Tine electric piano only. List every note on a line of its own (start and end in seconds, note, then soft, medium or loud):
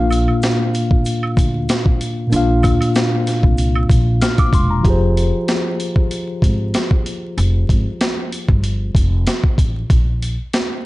0.00 2.26 A#2 medium
0.00 2.27 A#3 medium
0.00 2.28 D4 medium
0.00 2.29 F4 medium
0.00 2.30 F5 medium
2.27 4.78 A#2 medium
2.27 4.79 A#3 medium
2.32 4.81 D4 medium
2.32 4.82 F4 medium
2.36 4.83 F5 medium
4.21 4.38 F6 medium
4.39 4.53 D6 medium
4.54 4.70 C6 medium
4.70 5.00 A#5 medium
4.81 7.31 F3 medium
4.81 7.33 F4 medium
4.86 7.34 G4 medium
4.86 7.35 G#4 medium
4.90 7.36 C5 medium